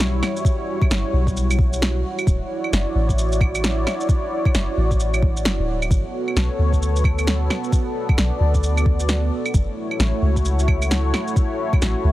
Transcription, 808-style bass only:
Already playing: B1
0.90 G1
1.13 B1
2.27 D1
2.72 F#1
2.95 A1
4.54 F#1
4.77 A1
5.45 F#1
5.59 D1
5.90 G1
6.36 B1
6.59 D2
8.18 B1
8.40 D2
9.54 F#1
9.99 A1
10.22 C#2
11.82 A1
12.04 C#2

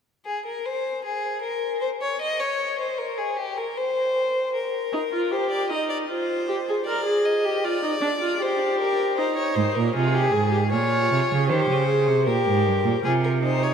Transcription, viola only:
4.93 D#4
5.12 F4
5.31 G4
5.70 D#4
6.09 F4
6.48 G4
6.69 G#4
6.87 A#4
7.05 G#4
7.45 G4
7.64 F4
7.83 D#4
8.01 D4
8.22 F4
8.41 G4
9.17 D#4
9.95 F4
10.14 G4
10.32 G#4
10.51 G4
10.71 F4
11.48 G4
11.87 G#4
12.27 G4
13.05 F4
13.42 D#4

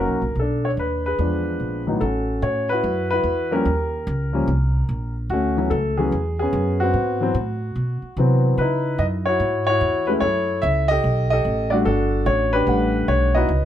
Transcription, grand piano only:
Already playing: F#3 A#3 C#4 D#4 F#4 A#4
0.39 D4 A4
0.65 C#5
0.79 B4
1.06 G#4 B4
1.19 F3 G#3 B3 D4
1.86 A2 E3 F#3 B3 D#4
2.00 C#4 F#4 A4
2.43 C#5
2.69 E4 F#4 B4
3.10 E4 F#4 B4
3.51 F3 G3 A#3 C#4 G4 A#4
4.33 F3 G3 A#3 C#4
5.30 A3 C#4 F#4
5.57 E3 F#3 B3 C#4
5.70 A4
5.97 E3 F#3 B3 C#4 G#4
6.39 B3 C#4 G#4
6.80 B3 C4 F#4
7.21 E3 F#3 B3 C4
8.18 E3 F#3 B3 C4
8.58 D#4 E4 B4
8.99 D#5
9.26 E4 F#4 C#5
9.67 E4 F#4 C#5
10.07 G#3 A3 C#4 E4 B4
10.20 E4 A4 C#5
10.62 E5
10.88 G4 A4 D#5
11.30 G4 A4 D#5
11.70 G3 A3 D4 F#4 D5
11.85 D4 F#4 A4
12.26 C#5
12.53 D4 G4 B4
12.67 G3 A3 D4 F#5
13.08 C#5
13.35 B3 D#4 E4 F#4 B4 D#5

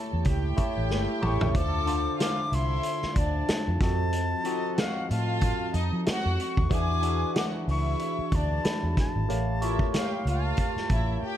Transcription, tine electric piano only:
Already playing: A3 E4 G4 C#5 A5
0.56 A3 E4 G4 C#5 A5
1.21 A3 E4 G4 C#5 A5
1.54 D3 D4 F4 C5 E5
1.86 D3 D4 F4 C5 F5
3.81 F3 C4 F#4 A4 D#5
4.45 F3 C4 F#4 A4 D#5
6.70 E3 D4 F#4 G#4 E5
7.02 E3 D4 F#4 G#4 E5
9.29 A3 G4 A#4 C#5 F5
9.61 A3 F4 G4 A#4 C#5

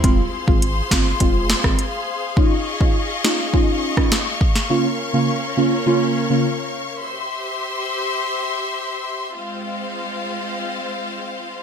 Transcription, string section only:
0.04 G#4 C5 F5 C6
2.37 D#5 C#6
4.70 C#4 A#4 C#5
7.03 G4 C5 E5 C6
9.36 G#3 C4 F4 C5 F5

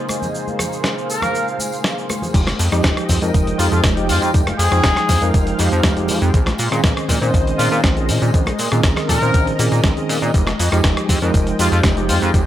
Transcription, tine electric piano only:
Already playing: C#3 G#3 A#3 C4 D#4
2.34 F3 G#3 D#4 G4
2.71 F3 G#3 D#4 G4
3.22 F3 G#3 D#4 A#4
3.58 F3 G#3 D#4 G4
3.96 F3 G#3 D#4 G4
4.33 F3 G#3 D#4 G4
4.71 F3 G#3 D#4 G5
5.21 F3 G#3 D#4 A#4
5.58 F3 G#3 D#4 G4
5.96 F3 G#3 D#4 G4
6.33 D#3 C4 C#4 G#4
6.71 D#3 C4 C#4 G#4
7.21 D#3 C4 C#4 C5
7.58 D#3 C4 C#4 G#4
7.96 D#3 C4 C#4 G#4
8.33 D#3 C4 C#4 G#4
8.71 D#3 C4 C#4 G#4
9.21 D#3 C4 C#4 C5
9.59 D#3 C4 C#4 G#4
9.96 D#3 C4 C#4 G#4
10.34 F3 G#3 D#4 G4
10.72 F3 G#3 D#4 G4
11.22 F3 G#3 D#4 A#4
11.59 F3 G#3 D#4 G4
11.97 F3 G#3 D#4 G4
12.34 F3 G#3 D#4 G4

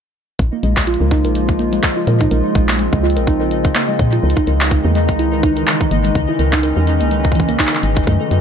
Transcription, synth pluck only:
0.53 A#3
0.63 G#3
0.87 F4
1.01 A#4
1.11 D#4
1.25 A#4
1.59 A#3
1.73 G#3
1.97 F4
2.07 A#4
2.21 D#4
2.31 A#4
2.69 A#3
2.79 G#3
3.03 F4
3.17 A#4
3.27 D#4
3.41 A#4
3.75 A#3
3.89 G#3
4.13 F4
4.23 A#4
4.37 D#4
4.47 A#4
4.85 A#3
4.95 G#3
5.19 E4
5.33 A#4
5.43 D#4
5.57 A#4
5.91 A#3
6.05 G#3
6.29 E4
6.39 A#4
6.53 D#4
6.63 A#4
7.01 A#3
7.11 G#3
7.35 E3
7.49 A#3
7.59 D#4
7.73 A#4
8.07 A3
8.21 A4

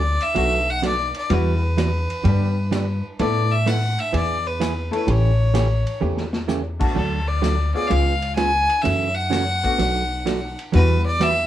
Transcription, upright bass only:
Already playing: D2
0.36 B1
1.30 E2
2.25 G2
3.20 A2
4.13 E2
5.08 A1
6.02 E2
6.96 D2
7.91 C#2
8.85 F#2
9.79 B1
10.74 E2

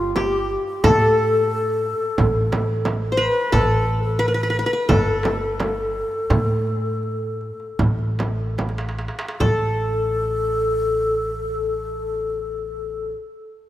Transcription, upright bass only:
Already playing: G1
0.84 A2
2.19 A1
3.53 A1
4.90 G1
6.30 A2
7.79 A1
9.40 A1

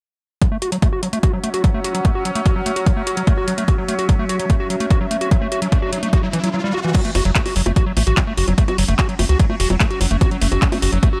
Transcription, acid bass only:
0.42 F#3
0.52 A3
0.62 F#4
0.72 F#3
0.82 A3
0.93 F#4
1.03 F#3
1.13 A3
1.23 F#4
1.33 F#3
1.44 A3
1.54 F#4
1.64 F#3
1.74 A3
1.84 F#4
1.95 F#3
2.05 A3
2.15 F#4
2.25 F#3
2.35 A3
2.46 F#4
2.56 F#3
2.66 A3
2.76 F#4
2.86 F#3
2.97 A3
3.07 F#4
3.17 F#3
3.27 A3
3.37 F#4
3.48 F#3
3.58 A3
3.68 F#4
3.78 F#3
3.88 A3
3.99 F#4
4.09 F#3
4.19 A3
4.29 F#4
4.39 F#3
4.50 A3
4.60 F#4
4.70 F#3
4.80 A3
4.91 F#4
5.01 F#3
5.11 A3
5.21 F#4
5.31 F#3
5.42 A3
5.52 F#4
5.62 F#3
5.72 A3
5.82 F#4
5.93 F#3
6.03 A3
6.13 F#4
6.23 F#3
6.33 E3
6.44 F#3
6.54 F#3
6.64 G3
6.74 F#4
6.84 E3
6.95 F#3
7.05 A3
7.15 F#4
7.25 F#3
7.35 A3
7.46 F#4
7.56 F#3
7.66 A3
7.76 F#4
7.86 F#3
7.97 A3
8.07 F#4
8.17 F#3
8.27 A3
8.37 F#4
8.48 F#3
8.58 A3
8.68 F#4
8.78 F#3
8.88 A3
8.99 F#4
9.09 F#3
9.19 A3
9.29 F#4
9.39 F#3
9.50 A3
9.60 F#4
9.70 F#3
9.80 A3
9.90 F#4
10.01 F#3
10.11 A3
10.21 F#4
10.31 F#3
10.42 A3
10.52 F#4
10.62 F#3
10.72 A3
10.82 F#4
10.93 F#3
11.03 A3
11.13 F#4

